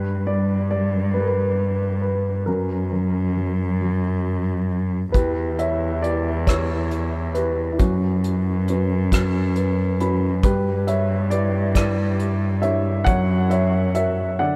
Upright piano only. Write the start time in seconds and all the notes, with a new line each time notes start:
Already playing: G3 D4 B4
0.26 G3 D5
0.71 G3 D5
1.14 G3 B4
1.21 A#4
1.28 B4
2.02 B4
2.46 F#3 C#4 A#4
2.92 F#3
3.36 F#3
3.81 F#3
5.12 E3 G4 B4
5.59 C#5 E5
6.02 E4 G4 B4 D5
6.47 E4 G4 B4 C#5
7.35 E4 G4 B4
7.72 E4
7.79 F#3 C#4 F#4
8.69 C#4 F#4 B4
9.12 C#4 F#4 B4
9.57 B4
10.01 C#4 F#4 B4 B5
10.44 G3 G4 B4
10.87 C#5 E5
11.30 E4 G4 B4 D5
11.75 E4 G4 B4 D5
12.62 D4 E4 G4 C#5 E5
13.04 F#3 C#5 F#5
13.50 C#5 E5
13.95 F#4 A#4 C#5 E5
14.39 D3 D5 F#5